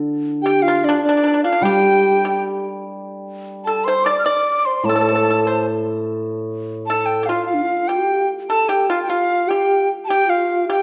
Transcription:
Already playing: D3
0.42 G4 G5
0.62 F4 F5
0.68 F4
0.84 D4 D5
0.89 D4
1.03 D4 D5
1.09 D4
1.17 D4
1.24 D4
1.34 D4
1.44 D4 F4 F5
1.53 D4
1.62 G3 G4 G5
2.25 G4
3.64 A4 A5
3.84 C5 C6
4.04 D5 D6
4.19 F6
4.26 D5 D6
4.65 C5 C6
4.84 A2 A5
4.88 A4
4.96 A4 C5
5.01 A4
5.09 A4 C5
5.15 A4
5.25 A4
5.30 A4
5.46 C5
6.86 A4 A5
7.06 G5
7.23 G4 F5
7.29 F4
7.45 F4 F5
7.54 D4
7.62 F4
7.88 G4 G5
8.50 A4 A5
8.69 G4 G5
8.89 F4 F5
9.03 G5
9.08 F4 F5
9.47 G4 G5
10.05 G4 A5
10.09 G4 G5
10.27 F4 F5
10.46 F4
10.68 G4 G5

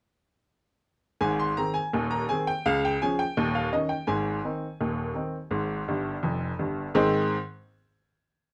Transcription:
1.21 G#1 G#2 G#5
1.39 C6
1.57 D#3 C4 G#4 A#5
1.74 G#5
1.93 D#1 D#2
2.11 A#5
2.29 D#3 C4 G#4 G#5
2.47 G5
2.66 C#2 C#3 F5
2.85 G5
3.02 F3 C#4 G#4 G#5
3.19 G5
3.37 D#1 D#2
3.55 F5
3.73 D#3 C#4 D#4 D#5
3.89 G5
4.07 G#1 G#2 G#5
4.44 D#3 C4 D#4
4.81 D#1 D#2
5.15 D#3 C4 D#4
5.51 G#1 G#2
5.88 G1 G2
6.23 F1 F2
6.59 G1 G2
6.95 G#2 D#3 C4 D#4 G#4 C5

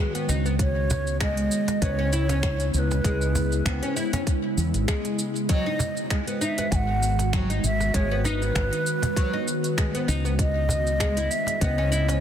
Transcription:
Already playing: D#3 G#3 B3 F#4 B4
0.00 G#3
0.15 B3, cajon slap, closed hi-hat, shaker
0.29 C#2 D#4, shaker
0.46 B3, shaker
0.59 C#3 B3 E4 C#5, kick, closed hi-hat, shaker
0.90 cajon bass, cajon slap, shaker
1.07 shaker
1.20 G#3 D#5, finger snap, kick, closed hi-hat, shaker
1.37 closed hi-hat, shaker
1.51 shaker
1.68 cajon slap, closed hi-hat, shaker
1.82 C#2 B3 C#5, kick, closed hi-hat, shaker
1.99 C#4
2.13 E4, shaker
2.29 C#4, cajon slap, closed hi-hat, shaker
2.43 finger snap, kick, closed hi-hat, shaker
2.60 closed hi-hat, shaker
2.74 C#2 C#5, shaker
2.78 B4
2.91 cajon slap, shaker
3.04 C#2 G#3, kick, closed hi-hat, shaker
3.21 shaker
3.35 cajon bass, cajon slap, shaker
3.52 shaker
3.66 C#2 B3, finger snap, kick, closed hi-hat, shaker
3.83 C#4, closed hi-hat, shaker
3.96 E4, shaker
4.13 C#4, cajon bass, cajon slap, closed hi-hat, shaker
4.27 kick, closed hi-hat, shaker
4.57 E2, shaker
4.74 G#1, closed hi-hat, shaker
4.88 G#3, finger snap, kick, closed hi-hat, shaker
5.05 cajon slap, closed hi-hat, shaker
5.19 shaker
5.36 shaker
5.49 D#3 F#3 B3 F#4 D#5, kick, closed hi-hat, shaker
5.66 D#4
5.79 cajon bass, cajon slap, shaker
5.97 shaker
6.10 G#3, finger snap, kick, closed hi-hat, shaker
6.27 B3, closed hi-hat, shaker
6.41 D#4 E5, shaker
6.58 B3, cajon slap, closed hi-hat, shaker
6.72 G#1 F#5 G#5, kick, closed hi-hat, shaker
7.03 shaker
7.19 cajon slap, closed hi-hat, shaker
7.33 F#3, finger snap, kick, closed hi-hat, shaker
7.50 D#4, closed hi-hat, shaker
7.64 G#1 E5, shaker
7.80 cajon slap, shaker
7.94 G#1 G#3 C#5, kick, closed hi-hat, shaker
8.11 B3
8.24 D#4 B4, cajon bass, cajon slap, shaker
8.42 B3, shaker
8.55 G#1, finger snap, kick, closed hi-hat, shaker
8.73 closed hi-hat, shaker
8.87 shaker
9.02 cajon bass, cajon slap, closed hi-hat, shaker
9.16 F#3, kick, closed hi-hat, shaker
9.33 D#4
9.48 shaker
9.64 closed hi-hat, shaker
9.78 G#3, finger snap, kick, closed hi-hat, shaker
9.95 B3, cajon slap, closed hi-hat, shaker
10.08 C#2 D#4, shaker
10.25 B3, shaker
10.39 C#3 G#3 E4 D#5, kick, closed hi-hat, shaker
10.69 cajon bass, cajon slap, shaker
10.87 shaker
11.00 G#3, finger snap, kick, closed hi-hat, shaker
11.17 E4, closed hi-hat, shaker
11.31 E5, shaker
11.47 cajon slap, closed hi-hat, shaker
11.61 C#2 B3 D#5, kick, closed hi-hat, shaker
11.78 C#4
11.92 E4, shaker
12.08 C#4, cajon slap, closed hi-hat, shaker

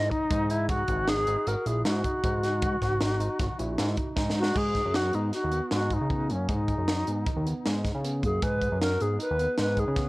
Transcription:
Already playing: G#2 D#5
0.10 D#4, kick, closed hi-hat
0.31 G#2 D#4, kick, closed hi-hat
0.50 D#4 E4, closed hi-hat
0.69 F#4, kick, closed hi-hat
0.88 G#1, kick, closed hi-hat
1.08 G#1 D#4 G#4, snare, closed hi-hat
1.27 G#1 D#4, closed hi-hat
1.47 G#1 F#4 A#4, closed hi-hat
1.66 A#1 E4 G#4, closed hi-hat
1.85 G#2 F#4, snare, closed hi-hat
2.05 D#4, kick, closed hi-hat
2.24 G#2 D#4, kick, closed hi-hat
2.44 D#4, snare, closed hi-hat
2.62 F#4, kick, closed hi-hat
2.82 G#1, kick, snare, closed hi-hat
3.01 G#1 D#4, snare, closed hi-hat
3.20 G#1 D#4, closed hi-hat
3.39 G#1 F#4, kick, snare, closed hi-hat
3.59 A#1 E4, closed hi-hat
3.78 G#2, snare, closed hi-hat
3.97 D#4, kick, closed hi-hat
4.16 G#2 D#4, kick, snare
4.30 snare
4.36 D#4 F#4
4.43 snare
4.55 G#2 G#4, kick, crash
4.75 kick, snare, closed hi-hat
4.85 F#2
4.94 F#4, snare, closed hi-hat
5.12 G#2 B3 D#4, closed hi-hat
5.32 D#4 F#4, snare, closed hi-hat
5.44 D#2
5.51 B3, closed hi-hat
5.71 G#2 F#4, snare, closed hi-hat
5.90 D#4, kick, closed hi-hat
6.01 C#3
6.09 B3, kick, closed hi-hat
6.29 F#2 A#3 C#4, closed hi-hat
6.49 G#2 D#4 G#4, kick, closed hi-hat
6.68 kick, closed hi-hat
6.78 F#2
6.88 F#4, snare, closed hi-hat
7.07 G#2 B3, closed hi-hat
7.26 D#4, kick, closed hi-hat
7.36 D#2
7.46 B3, closed hi-hat
7.66 G#2, snare, closed hi-hat
7.85 D#4, kick, snare, closed hi-hat
7.95 C#3
8.04 B3, closed hi-hat
8.23 F#2 A#3 G#4, kick, closed hi-hat
8.43 G#2 G#4 B4, kick, closed hi-hat
8.62 kick, closed hi-hat
8.72 F#2
8.82 F#4 A#4, snare, closed hi-hat
9.01 G#2 B3 G#4, closed hi-hat
9.19 D#4 B4, closed hi-hat
9.31 D#2
9.39 B3, closed hi-hat
9.58 G#2 B4, snare, closed hi-hat
9.77 D#4 G#4, kick, closed hi-hat
9.88 C#3
9.95 B3, kick, snare, closed hi-hat

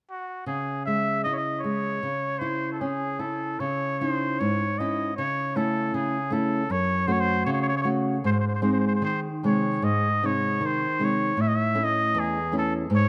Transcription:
0.11 F#4
0.46 C#3 G#4
0.86 G#3 E5
1.24 E4 D#5
1.33 C#5 D#5
1.60 C#5
1.64 G#3
2.03 C#3
2.39 E4 C5
2.73 A4
2.81 C#4 G#4
3.19 E4 A4
3.60 C#3 C#5
3.99 C#4 D#4 E4 C#5
4.10 C5
4.40 G#2 C#5
4.79 C#4 D#4 E4 D#5
5.17 C#3 C#5
5.56 A3 C#4 E4 A4
5.94 C#3 G#4
6.30 A3 C#4 E4 A4
6.70 F#2 C#5
7.07 A3 C#4 F#4 C5
7.12 C#5
7.20 C5
7.45 C#3 C#5
7.53 C#5
7.62 C#5
7.68 C#5
7.77 C#5
7.82 A3 C#4 F#4 C#5
8.24 G#2 C5
8.32 C5
8.40 C5
8.48 C5
8.55 C5
8.62 G#3 C4 D#4 C5
8.73 C5
8.80 C5
8.87 C5
8.95 C5
9.02 D#3 C5
9.43 C3 G#3 D#4 C#5
9.82 G#2 D#5
10.23 C3 G#3 D#4 C#5
10.61 D#3
10.66 C5
10.99 C3 G#3 D#4
11.05 C#5
11.37 A2
11.41 E5
11.48 D#5
11.56 E5
11.75 A3 C#4 E4
11.84 D#5
12.15 E2
12.20 G#4
12.52 A3 C#4 E4
12.59 A4
12.90 G#2
12.96 C#5

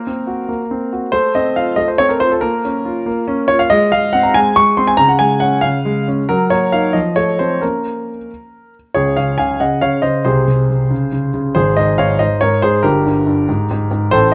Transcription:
Already playing: A#3 A#4
0.07 C4
0.27 F#4
0.49 A#3
0.71 C4
0.93 F#4
1.12 A3 C5
1.35 C4 D#5
1.56 F4 F5
1.76 A3 D#5
1.88 C5
1.98 C4 C#5
2.09 A#4
2.20 F4 C5
2.31 A4
2.41 A#3 A#4
2.65 C#4
2.85 F4
3.06 A#3
3.28 C#4
3.48 F4 C#5
3.59 F5
3.70 G#3 D#5
3.92 G#3 F5
4.13 C4 F#5
4.23 A#5
4.34 G#3 G#5
4.56 G#3 C#6
4.77 C4 C6
4.87 G#5
4.97 C#3 A#5
5.08 F#5
5.19 G#3 G#5
5.40 C#4 F#5
5.61 C#3 F5
5.85 G#3
6.08 C#4
6.29 F#3 A#4
6.50 A#3 C#5
6.72 A#3 D#4 F5
6.93 F3 D#5
7.16 A3 C#5
7.39 A3 C4 C5
7.61 A#3 C#4 A#4
8.94 C#2 C#3 G#4 C#5
9.16 C#3 C#5 F5
9.38 C#3 F5 G#5
9.60 C#3 D#5 F#5
9.81 C#3 C#5 F5
10.02 C#3 C5 D#5
10.25 C2 C3 G#4 C5
10.48 C3
10.70 C3
10.91 C#3
11.12 C#3
11.34 C#3
11.55 G#1 G#2 G#4 C5
11.77 G#2 C5 D#5
11.98 G#2 C#5 F5
12.19 G#2 C5 D#5
12.41 G#2 A#4 C#5
12.62 G#2 G#4 C5
12.83 G1 G2 G4 A#4
13.06 G2
13.27 G2
13.49 G#2
13.71 G#2
13.91 G#2
14.11 A1 A2 A4 C5

